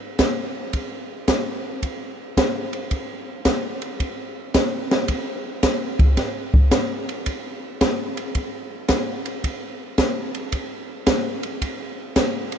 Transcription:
0.19 kick, snare, hi-hat pedal, ride
0.73 kick, ride
1.28 kick, snare, hi-hat pedal, ride
1.83 kick, ride
2.37 kick, snare, hi-hat pedal, ride
2.73 ride
2.91 kick, ride
3.45 kick, snare, hi-hat pedal, ride
3.82 ride
4.00 kick, ride
4.54 kick, snare, hi-hat pedal, ride
4.91 snare, ride
5.08 kick, ride
5.63 kick, snare, hi-hat pedal, ride
5.99 kick, ride
6.17 kick, snare, ride
6.54 kick
6.71 kick, snare, hi-hat pedal, ride
7.09 ride
7.26 kick, ride
7.81 kick, snare, hi-hat pedal, ride
8.17 ride
8.35 kick, ride
8.88 kick, snare, hi-hat pedal, ride
9.26 ride
9.44 kick, ride
9.98 kick, snare, hi-hat pedal, ride
10.35 ride
10.52 kick, ride
11.07 kick, snare, hi-hat pedal, ride
11.43 ride
11.62 kick, ride
12.16 kick, snare, hi-hat pedal, ride
12.52 ride

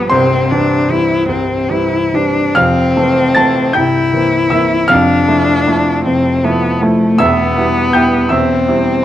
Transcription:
Already playing: G1 G2 F3 G3 B3 B4 D5 B5 D6
0.10 C1 C2 C4 C5 C6
0.51 E3 G3 C4 D4
0.89 E3 G3 C4 E4
1.28 C1 C2 C4
1.70 E3 G3 C4 E4
2.14 E3 G3 C4 D4
2.55 F1 F2 C4 F5 F6
2.96 E3 A3 C4
3.35 E3 A3 C4 A5 A6
3.73 C1 C2 E4 G5 G6
4.13 E3 A#3 C4
4.50 E3 A#3 C4 E5 E6
4.88 F1 F2 D4 F5 F6
5.28 F3 A3 E4
5.67 F3 A3 E4
6.05 F1 F2 C4
6.44 F3 A3 B3 E4
6.81 F3 A3 E4
7.18 E1 E2 B3 E5 E6
7.57 G3 B3 E4
7.93 G3 B3 E4 G5 G6
8.29 E1 E2 C4 E5 E6
8.68 G3 C4 E4

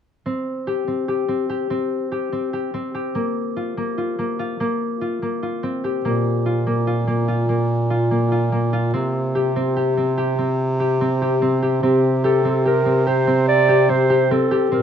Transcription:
0.26 C4
0.67 G4
0.88 C4
1.08 G4
1.28 C4
1.49 G4
1.70 C4
2.12 G4
2.32 C4
2.53 G4
2.74 C4
2.94 G4
3.15 A#3
3.56 F4
3.77 A#3
3.98 F4
4.19 A#3
4.39 F4
4.60 A#3
5.01 F4
5.22 A#3
5.43 F4
5.63 C4
5.84 G4
6.04 A#2 A#3
6.46 F4
6.67 A#3
6.87 F4
7.07 A#3
7.28 F4
7.49 A#3
7.90 F4
8.11 A#3
8.32 F4
8.52 A#3
8.73 F4
8.94 C3 C4
9.35 G4
9.56 C4
9.76 G4
9.97 C4
10.17 G4
10.38 C4
10.80 G4
11.01 C4
11.22 G4
11.42 C4
11.62 G4
11.83 C3 C4 G4
12.24 G4 A4
12.45 C4
12.65 G4 A#4
12.86 C4
13.07 G4 C5
13.27 C4
13.48 D5
13.69 G4
13.89 C4 C5
14.10 G4
14.31 C4 A4
14.51 G4
14.71 A#2 C4 A#4

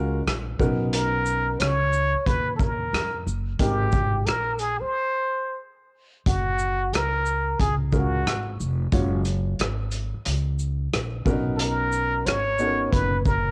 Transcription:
Already playing: C#2 G#3 C#4 F4 F#4 A#4
0.26 A#1, cross-stick, closed hi-hat
0.59 B1 B3 C#4 D#4 F#4 A#4, kick, shaker
0.93 A#4, closed hi-hat
1.26 shaker
1.60 C#2 C#5, cross-stick, closed hi-hat
1.93 shaker
2.14 muted upright bass stroke
2.26 D#2 B4, kick, closed hi-hat
2.56 A4 A#4, kick, shaker
2.93 F2, cross-stick, closed hi-hat
3.27 F#1, shaker
3.59 G#1 G#3 C4 D#4 G4 A#4, kick, closed hi-hat
3.92 kick, shaker
4.26 A#1 A#4, cross-stick, closed hi-hat
4.59 G#4, closed hi-hat, shaker
4.81 C5, muted upright bass stroke
6.26 F#1 F#4, kick, closed hi-hat
6.59 shaker
6.93 C#2 A#4, cross-stick, closed hi-hat
7.26 shaker
7.60 C#2 G#4, kick, closed hi-hat
7.92 G#3 C#4 F4 F#4 A#4, kick, shaker
8.26 G#1, cross-stick, closed hi-hat
8.60 F1, shaker
8.92 F#1 G#3 C#4 F4 F#4 C#5, kick, closed hi-hat
9.25 closed hi-hat, shaker
9.59 G#1, cross-stick, closed hi-hat
9.91 closed hi-hat, shaker
10.14 muted upright bass stroke
10.25 C#2, closed hi-hat
10.59 shaker
10.93 A#1, cross-stick, closed hi-hat
11.25 B1 B3 C#4 D4 F#4 A#4, kick, shaker
11.32 D#4
11.56 A4, closed hi-hat
11.61 A#4
11.92 shaker
12.26 G#1 C#5, cross-stick, closed hi-hat
12.59 B3 C#4 D#4 F#4 A4, shaker
12.66 A#4
12.92 F#1 B4, kick, closed hi-hat
13.26 A#4, kick, shaker

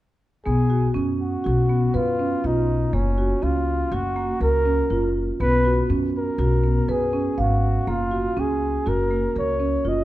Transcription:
0.45 B1 B3 G#4
0.70 F#4
0.94 F#2 C#4
1.21 F#4
1.44 B1 F#4
1.69 B3
1.94 F#2 F4 B4
2.19 C#4
2.44 B1 D#4 F4
2.93 F#1 A#3 C#4
3.18 F#4
3.42 C#2 C#4 F4
3.92 F#1 F#4
4.16 A#3
4.40 C#2 A#4
4.66 C#4
4.90 F#1 F4
5.40 B1 B3 B4
5.65 F#4
5.90 F#2 C#4
6.17 A#4
6.38 B1 F#4
6.64 B3
6.88 F#2 G#4 B4
7.13 C#4
7.38 G#1 F#4 F5
7.87 F#1 A#3 F4
8.11 F#4
8.37 C#2 C#4 G#4
8.86 F#1 F#4 A#4
9.11 A#3
9.36 C#2 A#4 C#5
9.60 C#4
9.85 F#1 F4 D#5

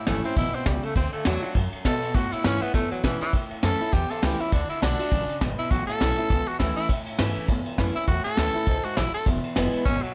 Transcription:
Already playing: A2
0.07 G#1 E3 A3 C#4 E4, snare, ride
0.24 C4 C#4 E4, muted upright bass stroke, ride
0.36 A1 B2 E4, kick, ride
0.54 C4, muted upright bass stroke, ride
0.66 C#2 C#3 G3, kick, snare, ride
0.83 A3, ride
0.95 D2 D3 C4, kick, ride
1.13 A3, muted upright bass stroke, ride
1.25 E2 D3 F#3 A3 D4 F#4, snare, ride
1.43 D4 F#4, ride
1.55 F#2, kick, ride
1.72 muted upright bass stroke, ride
1.85 G#2 B2 A4, kick, snare, ride
2.02 muted upright bass stroke, ride
2.15 A2 F#4, kick, ride
2.32 E4, muted upright bass stroke, snare, ride
2.44 G#2 E3 A3 C#4 E4, snare, ride
2.61 B3 C#4 E4, muted upright bass stroke, ride
2.74 E2 A2 A3, kick, snare, ride
2.91 F#3, muted upright bass stroke, ride
3.03 B2 E3 A3 C#4 E4, kick, snare, ride
3.21 E3 C#4 E4, muted upright bass stroke, snare, ride
3.33 A2, kick, ride
3.51 muted upright bass stroke, ride
3.63 F#2 E3 A3 C#4 E4 A4, snare, ride
3.80 C#4 E4, muted upright bass stroke, ride
3.93 E2 G4, kick, snare, ride
4.10 A4, snare, ride
4.22 C#2 E3 A3 C#4 E4 G4, snare, ride
4.40 C#4 E4, ride
4.52 D2 D3 D4, kick, ride
4.69 E4, muted upright bass stroke, ride
4.82 B1 D3 A3 D4 F#4, snare, ride
4.99 D4 F#4, ride
5.11 A1 C#3, kick, ride
5.29 muted upright bass stroke, ride
5.41 G#1 B2, kick, snare, ride
5.58 E4, muted upright bass stroke, ride
5.71 A1 A2 F#4, kick, ride
5.87 A4, muted upright bass stroke, snare, ride
6.01 B1 E3 A3 C#4 E4, snare, ride
6.18 C#4 E4, ride
6.30 C#2 E2, kick, ride
6.48 F#4, ride
6.59 D2 E3 A3 C#4 E4, kick, snare, ride
6.76 E4, muted upright bass stroke, ride
6.89 E2 A2, kick, ride
7.06 muted upright bass stroke, ride
7.18 G#2 E3 A3 C#4 E4, snare, ride
7.36 muted upright bass stroke, ride
7.48 E2 A2, kick, ride
7.65 muted upright bass stroke, ride
7.78 F#2 E3 A3 C#4 E4, kick, snare, ride
7.95 C#4 E4, muted upright bass stroke, ride
8.08 E2 A2 F#4, kick, ride
8.24 A4, muted upright bass stroke, snare, ride
8.37 D2 E3 A3 C#4 E4, snare, ride
8.55 C#4 E4, muted upright bass stroke, ride
8.67 C#2 G#2, kick, ride
8.84 F#4, muted upright bass stroke, ride
8.97 A1 F#2 E4, snare, ride
9.14 A4, muted upright bass stroke, ride
9.26 E1 E2, kick, ride
9.44 muted upright bass stroke, ride
9.56 F#1 E3 G#3 B3 E4, snare, ride
9.73 ride
9.85 G#1 B2 C#4, kick, ride
10.02 F#3, muted upright bass stroke, ride

